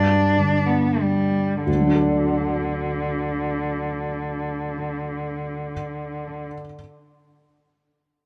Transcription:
0, 0, Header, 1, 3, 480
1, 0, Start_track
1, 0, Key_signature, 2, "major"
1, 0, Tempo, 500000
1, 7927, End_track
2, 0, Start_track
2, 0, Title_t, "Cello"
2, 0, Program_c, 0, 42
2, 0, Note_on_c, 0, 62, 57
2, 638, Note_on_c, 0, 59, 44
2, 652, Note_off_c, 0, 62, 0
2, 967, Note_on_c, 0, 55, 42
2, 981, Note_off_c, 0, 59, 0
2, 1586, Note_off_c, 0, 55, 0
2, 1591, Note_on_c, 0, 50, 39
2, 6186, Note_off_c, 0, 50, 0
2, 7927, End_track
3, 0, Start_track
3, 0, Title_t, "Felt piano"
3, 0, Program_c, 1, 0
3, 0, Note_on_c, 1, 43, 42
3, 11, Control_c, 1, 64, 127
3, 365, Note_on_c, 1, 50, 28
3, 1562, Note_off_c, 1, 43, 0
3, 1597, Note_off_c, 1, 50, 0
3, 1597, Note_on_c, 1, 38, 29
3, 1624, Control_c, 1, 64, 0
3, 1662, Note_on_c, 1, 50, 28
3, 1730, Note_on_c, 1, 54, 27
3, 1795, Note_on_c, 1, 62, 28
3, 1801, Control_c, 1, 64, 127
3, 1868, Note_on_c, 1, 69, 29
3, 1930, Note_on_c, 1, 74, 27
3, 5500, Control_c, 1, 64, 0
3, 6192, Note_off_c, 1, 38, 0
3, 6256, Note_off_c, 1, 50, 0
3, 6324, Note_off_c, 1, 54, 0
3, 6390, Note_off_c, 1, 62, 0
3, 6462, Note_off_c, 1, 69, 0
3, 6525, Note_off_c, 1, 74, 0
3, 7927, End_track
0, 0, End_of_file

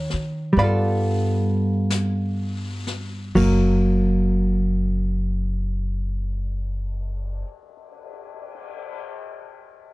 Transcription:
0, 0, Header, 1, 6, 480
1, 0, Start_track
1, 0, Tempo, 1351351
1, 677, Tempo, 1442308
1, 1157, Time_signature, 4, 2, 24, 8
1, 1157, Tempo, 1474201
1, 3301, End_track
2, 0, Start_track
2, 0, Title_t, "Hollow-body jazz guitar"
2, 0, Program_c, 0, 26
2, 0, Note_on_c, 0, 51, 38
2, 0, Note_on_c, 0, 73, 48
2, 0, Note_on_c, 0, 79, 54
2, 0, Note_on_c, 0, 82, 71
2, 186, Note_off_c, 0, 73, 0
2, 188, Note_off_c, 0, 79, 0
2, 188, Note_on_c, 0, 55, 45
2, 192, Note_off_c, 0, 51, 0
2, 204, Note_on_c, 0, 59, 46
2, 208, Note_off_c, 0, 82, 0
2, 208, Note_on_c, 0, 74, 58
2, 209, Note_on_c, 0, 83, 83
2, 211, Note_on_c, 0, 77, 63
2, 218, Note_on_c, 0, 65, 49
2, 226, Note_off_c, 0, 83, 0
2, 228, Note_on_c, 0, 69, 47
2, 1152, Note_off_c, 0, 74, 0
2, 1153, Note_off_c, 0, 77, 0
2, 1155, Note_off_c, 0, 55, 0
2, 1159, Note_on_c, 0, 54, 48
2, 1163, Note_off_c, 0, 59, 0
2, 1163, Note_on_c, 0, 58, 48
2, 1169, Note_off_c, 0, 65, 0
2, 1174, Note_off_c, 0, 69, 0
2, 2495, Note_off_c, 0, 54, 0
2, 2499, Note_off_c, 0, 58, 0
2, 3301, End_track
3, 0, Start_track
3, 0, Title_t, "Upright bass"
3, 0, Program_c, 1, 32
3, 201, Note_on_c, 1, 43, 66
3, 1148, Note_off_c, 1, 43, 0
3, 1158, Note_on_c, 1, 30, 66
3, 2481, Note_off_c, 1, 30, 0
3, 3301, End_track
4, 0, Start_track
4, 0, Title_t, "Cymbal swell"
4, 1487, Note_on_c, 9, 59, 33
4, 2985, Note_off_c, 9, 59, 0
4, 3301, End_track
5, 0, Start_track
5, 0, Title_t, "Muted upright bass strokes"
5, 46, Note_on_c, 9, 29, 30
5, 82, Note_off_c, 9, 29, 0
5, 3301, End_track
6, 0, Start_track
6, 0, Title_t, "Drums"
6, 36, Note_on_c, 9, 38, 21
6, 71, Note_off_c, 9, 38, 0
6, 193, Note_on_c, 9, 25, 28
6, 676, Note_off_c, 9, 25, 0
6, 676, Note_on_c, 9, 25, 32
6, 676, Note_on_c, 9, 38, 42
6, 676, Note_on_c, 9, 44, 47
6, 710, Note_off_c, 9, 38, 0
6, 710, Note_off_c, 9, 44, 0
6, 998, Note_on_c, 9, 38, 23
6, 1031, Note_off_c, 9, 38, 0
6, 1157, Note_on_c, 9, 36, 45
6, 1161, Note_on_c, 9, 49, 48
6, 1190, Note_off_c, 9, 36, 0
6, 1193, Note_off_c, 9, 49, 0
6, 1387, Note_off_c, 9, 25, 0
6, 3301, End_track
0, 0, End_of_file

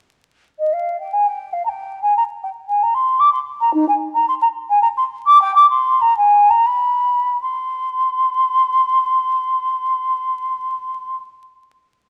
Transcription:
0, 0, Header, 1, 2, 480
1, 0, Start_track
1, 0, Key_signature, -3, "minor"
1, 0, Tempo, 525855
1, 533, Time_signature, 3, 2, 24, 8
1, 3401, Tempo, 545951
1, 4361, Tempo, 591716
1, 5321, Tempo, 650759
1, 5801, Tempo, 733496
1, 6761, Tempo, 715990
1, 9424, End_track
2, 0, Start_track
2, 0, Title_t, "Flute"
2, 0, Program_c, 0, 73
2, 540, Note_on_c, 0, 75, 70
2, 662, Note_on_c, 0, 77, 67
2, 676, Note_off_c, 0, 75, 0
2, 904, Note_off_c, 0, 77, 0
2, 915, Note_on_c, 0, 79, 63
2, 1027, Note_on_c, 0, 80, 72
2, 1040, Note_off_c, 0, 79, 0
2, 1156, Note_on_c, 0, 79, 70
2, 1170, Note_off_c, 0, 80, 0
2, 1391, Note_on_c, 0, 77, 67
2, 1405, Note_off_c, 0, 79, 0
2, 1500, Note_off_c, 0, 77, 0
2, 1505, Note_on_c, 0, 82, 59
2, 1537, Note_on_c, 0, 79, 65
2, 1546, Note_off_c, 0, 82, 0
2, 1838, Note_off_c, 0, 79, 0
2, 1844, Note_on_c, 0, 80, 61
2, 1969, Note_off_c, 0, 80, 0
2, 1978, Note_on_c, 0, 82, 69
2, 2032, Note_off_c, 0, 82, 0
2, 2219, Note_on_c, 0, 79, 69
2, 2273, Note_off_c, 0, 79, 0
2, 2451, Note_on_c, 0, 80, 65
2, 2580, Note_on_c, 0, 82, 73
2, 2594, Note_off_c, 0, 80, 0
2, 2685, Note_on_c, 0, 84, 81
2, 2698, Note_off_c, 0, 82, 0
2, 2916, Note_on_c, 0, 86, 78
2, 2930, Note_off_c, 0, 84, 0
2, 3026, Note_off_c, 0, 86, 0
2, 3032, Note_on_c, 0, 84, 80
2, 3086, Note_off_c, 0, 84, 0
2, 3290, Note_on_c, 0, 82, 75
2, 3405, Note_off_c, 0, 82, 0
2, 3411, Note_on_c, 0, 63, 90
2, 3528, Note_off_c, 0, 63, 0
2, 3537, Note_on_c, 0, 80, 72
2, 3590, Note_off_c, 0, 80, 0
2, 3768, Note_on_c, 0, 82, 76
2, 3881, Note_off_c, 0, 82, 0
2, 3888, Note_on_c, 0, 84, 86
2, 3939, Note_off_c, 0, 84, 0
2, 4007, Note_on_c, 0, 82, 70
2, 4060, Note_off_c, 0, 82, 0
2, 4253, Note_on_c, 0, 80, 84
2, 4354, Note_off_c, 0, 80, 0
2, 4359, Note_on_c, 0, 82, 86
2, 4408, Note_off_c, 0, 82, 0
2, 4482, Note_on_c, 0, 84, 82
2, 4533, Note_off_c, 0, 84, 0
2, 4721, Note_on_c, 0, 86, 93
2, 4831, Note_off_c, 0, 86, 0
2, 4842, Note_on_c, 0, 79, 111
2, 4953, Note_off_c, 0, 79, 0
2, 4957, Note_on_c, 0, 86, 83
2, 5068, Note_off_c, 0, 86, 0
2, 5073, Note_on_c, 0, 84, 81
2, 5326, Note_on_c, 0, 82, 89
2, 5337, Note_off_c, 0, 84, 0
2, 5441, Note_off_c, 0, 82, 0
2, 5447, Note_on_c, 0, 80, 79
2, 5689, Note_on_c, 0, 82, 87
2, 5700, Note_off_c, 0, 80, 0
2, 5807, Note_on_c, 0, 83, 83
2, 5817, Note_off_c, 0, 82, 0
2, 6286, Note_off_c, 0, 83, 0
2, 6297, Note_on_c, 0, 84, 77
2, 8816, Note_off_c, 0, 84, 0
2, 9424, End_track
0, 0, End_of_file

